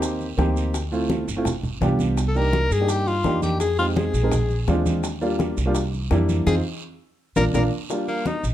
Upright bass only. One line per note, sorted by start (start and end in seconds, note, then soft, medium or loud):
0.00 0.34 D#2 medium
0.38 1.22 D2 medium
1.28 1.78 G1 medium
1.81 2.65 C2 loud
2.71 3.21 G2 medium
3.24 4.08 F2 medium
4.13 4.64 A#1 loud
4.67 5.51 D#2 medium
5.57 6.07 C2 medium
6.11 6.44 F2 loud
6.46 6.60 F2 loud
7.36 7.50 A#1 medium
7.54 7.67 A#1 loud
8.44 8.54 A#1 medium